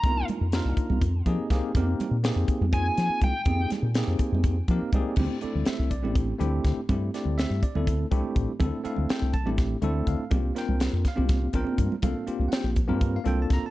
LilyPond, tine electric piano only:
\new Staff \with { instrumentName = "Tine electric piano" } { \time 7/8 \key d \minor \tempo 4 = 122 << { r2 r8 ees''8 f''8 | r2. r8 | r2 r8 f''8 d''8 | r8 d''8 e''8 d''8 r4. |
r8 d''8 e''8 d''8 r4. | r8 f''8 g''8 a''8 r4 f''8~ | f''8 g''8 r8 f''4 g''8 r8 | f''4 <fis'' g''>8 r8. f''16 g''16 a''16 bes''16 a''16 | } \\ { <bes d' ees' f' bes'>8. r16 <bes d' ees' f' bes'>4 r8 <bes c' ees' g' aes'>8 <bes c' ees' g' aes'>8 | <bes c' ees' g' bes'>8. r16 <bes c' ees' g' aes'>8. r16 <bes c' ees' f' aes'>4~ <bes c' ees' f' aes'>16 r16 | <bes c' ees' g' aes'>8. r16 <bes c' ees' g' aes'>4~ <bes c' ees' g' aes'>16 r16 <bes c' ees' g' bes'>8 <bes c' ees' g' aes'>8 | <a c' d' e' g'>8 <a c' d' e' a'>4 r16 <a c' d' e' g'>8 r16 <a c' d' e' g'>8. r16 |
<a c' d' e' g'>8 <a c' d' e' g'>4 r16 <a c' d' e' a'>8 r16 <a c' d' e' g'>8. r16 | <a c' d' e' a'>8 <a c' d' e' a'>4 r16 <a c' d' e' g'>8 r16 <a c' d' e' a'>8. r16 | <bes c' d' f' g'>8 <bes c' d' f' bes'>4 r16 <bes c' d' f' g'>8 r16 <bes c' d' f' bes'>8. r16 | <bes c' d' f' a'>8 <bes c' d' f' g'>4 r16 <bes c' d' f' bes'>8 r16 <bes c' d' f' a'>8. r16 | } >> }